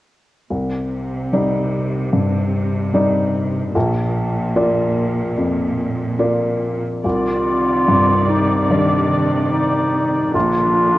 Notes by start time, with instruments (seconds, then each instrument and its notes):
0.50 felt piano C2, cello section C3
1.33 felt piano G3 D#4 D5
2.13 felt piano G2
2.94 felt piano G3 D#4 D5
3.75 felt piano A#1, cello section A#2
4.56 felt piano A#3 F4 D5
5.37 felt piano F2
6.19 felt piano A#3 F4 D5
7.04 felt piano C2, cello section C3, viola section D#3 D5, clarinet F4
7.88 felt piano G2
8.29 clarinet D#4
8.70 felt piano D#3 G3 D5, clarinet D4
9.52 clarinet D#4
10.34 felt piano A#1, cello section A#2, viola section D3 D4, clarinet F4